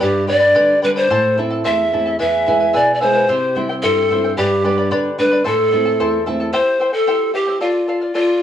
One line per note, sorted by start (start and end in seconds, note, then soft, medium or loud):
0.00 0.54 G2 medium
0.00 0.28 G4 medium
0.00 0.27 G4 medium
0.00 0.26 B4 medium
0.00 0.27 D5 medium
0.00 0.26 G5 medium
0.00 0.27 B5 medium
0.27 0.72 G3 soft
0.27 0.72 B3 soft
0.27 0.73 D4 medium
0.27 0.40 B4 medium
0.27 0.79 D5 loud
0.27 0.40 D5 medium
0.27 0.41 G5 medium
0.27 0.39 B5 medium
0.40 0.54 B4 soft
0.40 0.54 D5 soft
0.40 0.54 B5 soft
0.54 1.09 D3 medium
0.54 0.82 G4 medium
0.54 0.81 B4 medium
0.54 0.81 D5 medium
0.54 0.81 G5 medium
0.54 0.82 B5 medium
0.82 1.05 G3 soft
0.82 1.05 B3 soft
0.82 1.05 D4 medium
0.82 0.96 B4 medium
0.82 0.90 B4 medium
0.82 0.96 D5 medium
0.82 0.96 G5 medium
0.82 0.94 B5 medium
0.96 1.10 B4 soft
0.96 1.38 C5 loud
0.96 1.10 D5 soft
0.96 1.10 B5 medium
1.10 1.63 A2 medium
1.10 1.36 E4 medium
1.10 1.37 A4 medium
1.10 1.38 C5 medium
1.10 1.36 E5 medium
1.10 1.37 A5 medium
1.37 1.81 A3 medium
1.37 1.82 C4 soft
1.37 1.51 E4 medium
1.37 1.82 E4 medium
1.37 1.50 A4 medium
1.37 1.51 E5 medium
1.37 1.49 A5 medium
1.50 1.64 E4 soft
1.50 1.64 A4 soft
1.50 1.64 A5 medium
1.64 2.18 E2 medium
1.64 1.91 E4 medium
1.64 1.92 A4 medium
1.64 1.92 C5 medium
1.64 1.91 E5 medium
1.64 2.16 E5 medium
1.64 1.92 A5 medium
1.92 2.15 A3 soft
1.92 2.15 C4 soft
1.92 2.06 E4 medium
1.92 2.15 E4 medium
1.92 2.05 A4 medium
1.92 2.06 E5 medium
1.92 2.04 A5 medium
2.06 2.18 E4 soft
2.06 2.19 A4 soft
2.06 2.19 A5 medium
2.19 2.73 E2 medium
2.19 2.46 E4 medium
2.19 2.46 G#4 medium
2.19 2.46 B4 medium
2.19 2.45 E5 medium
2.19 2.77 E5 loud
2.19 2.46 G#5 medium
2.46 2.90 G#3 soft
2.46 2.91 B3 soft
2.46 2.60 E4 medium
2.46 2.91 E4 medium
2.46 2.60 B4 medium
2.46 2.60 E5 medium
2.46 2.59 G#5 medium
2.60 2.73 E4 soft
2.60 2.73 B4 medium
2.60 2.73 G#5 soft
2.73 3.27 B2 medium
2.73 3.00 E4 medium
2.73 3.01 G#4 medium
2.73 3.00 B4 medium
2.73 2.95 D5 medium
2.73 2.99 E5 medium
2.73 3.00 G#5 medium
2.95 3.03 D5 medium
3.00 3.24 G#3 soft
3.00 3.24 B3 soft
3.00 3.14 E4 medium
3.00 3.24 E4 medium
3.00 3.14 B4 medium
3.00 3.56 C5 medium
3.00 3.14 E5 medium
3.00 3.13 G#5 medium
3.14 3.28 E4 soft
3.14 3.28 B4 soft
3.14 3.28 G#5 medium
3.29 3.82 C3 medium
3.29 3.55 E4 medium
3.29 3.56 G4 medium
3.29 3.55 C5 medium
3.29 3.54 E5 medium
3.29 3.55 G5 medium
3.55 3.99 G3 soft
3.55 4.00 C4 soft
3.55 3.69 E4 medium
3.55 4.00 E4 medium
3.55 3.69 C5 medium
3.55 3.69 E5 medium
3.55 3.68 G5 medium
3.69 3.82 E4 soft
3.69 3.82 C5 soft
3.69 3.83 G5 medium
3.83 4.36 G2 medium
3.83 4.10 E4 medium
3.83 4.10 G4 medium
3.83 4.33 A4 loud
3.83 4.10 C5 medium
3.83 4.09 E5 medium
3.83 4.10 G5 medium
4.10 4.32 G3 soft
4.10 4.32 C4 soft
4.10 4.24 E4 medium
4.10 4.32 E4 medium
4.10 4.24 C5 medium
4.10 4.24 E5 medium
4.10 4.23 G5 medium
4.24 4.37 E4 soft
4.24 4.38 C5 soft
4.24 4.36 G5 medium
4.37 4.90 G2 medium
4.37 4.88 G4 medium
4.37 4.65 G4 medium
4.37 4.63 B4 medium
4.37 4.64 D5 medium
4.37 4.63 G5 medium
4.37 4.64 B5 medium
4.64 5.08 G3 medium
4.64 5.08 B3 soft
4.64 5.08 D4 medium
4.64 4.78 B4 medium
4.64 4.77 D5 medium
4.64 4.78 G5 medium
4.64 4.77 B5 medium
4.78 4.90 B4 soft
4.78 4.90 D5 soft
4.78 4.91 B5 medium
4.91 5.44 D3 medium
4.91 5.18 G4 medium
4.91 5.18 B4 medium
4.91 5.18 D5 medium
4.91 5.17 G5 medium
4.91 5.18 B5 medium
5.18 5.40 G3 soft
5.18 5.40 B3 soft
5.18 5.41 D4 medium
5.18 5.32 B4 medium
5.18 5.44 B4 medium
5.18 5.31 D5 medium
5.18 5.32 G5 medium
5.18 5.30 B5 medium
5.32 5.45 B4 soft
5.32 5.45 D5 soft
5.32 5.45 B5 soft
5.44 5.98 A2 medium
5.44 5.70 E4 medium
5.44 5.71 A4 medium
5.44 6.23 A4 medium
5.44 5.72 C5 medium
5.44 5.70 E5 medium
5.44 5.71 A5 medium
5.71 6.16 A3 medium
5.71 6.16 C4 soft
5.71 5.86 E4 medium
5.71 6.16 E4 medium
5.71 5.85 A4 medium
5.71 5.85 E5 medium
5.71 5.84 A5 medium
5.85 5.99 E4 soft
5.85 5.99 A4 soft
5.85 5.99 A5 medium
6.00 6.52 E2 medium
6.00 6.25 E4 medium
6.00 6.25 A4 medium
6.00 6.27 C5 medium
6.00 6.25 E5 medium
6.00 6.26 A5 medium
6.26 6.48 A3 soft
6.26 6.49 C4 soft
6.26 6.40 E4 medium
6.26 6.49 E4 medium
6.26 6.40 A4 medium
6.26 6.40 E5 medium
6.26 6.39 A5 medium
6.40 6.52 E4 soft
6.40 6.53 A4 soft
6.40 6.54 A5 medium
6.53 6.79 E4 medium
6.53 6.80 G4 medium
6.53 6.79 C5 medium
6.53 6.91 C5 medium
6.53 6.78 E5 medium
6.53 6.80 G5 medium
6.80 6.93 E4 medium
6.80 6.92 C5 medium
6.80 6.94 E5 medium
6.80 6.92 G5 medium
6.93 7.06 E4 soft
6.93 7.32 A4 medium
6.93 7.06 C5 soft
6.93 7.07 G5 soft
7.07 7.33 E4 medium
7.07 7.35 G4 medium
7.07 7.34 C5 medium
7.07 7.32 E5 medium
7.07 7.33 G5 medium
7.34 7.48 E4 medium
7.34 7.60 G4 medium
7.34 7.47 C5 medium
7.34 7.48 E5 medium
7.34 7.46 G5 medium
7.47 7.60 E4 soft
7.47 7.61 C5 soft
7.47 7.62 G5 medium
7.60 8.12 F4 medium
7.60 7.87 A4 medium
7.60 7.88 D5 medium
7.60 7.88 F5 medium
7.88 8.02 A4 medium
7.88 8.01 D5 medium
7.88 8.00 F5 medium
8.01 8.14 D5 soft
8.01 8.14 F5 medium
8.14 8.43 F4 medium
8.14 8.41 A4 medium
8.14 8.41 D5 medium
8.14 8.42 F5 medium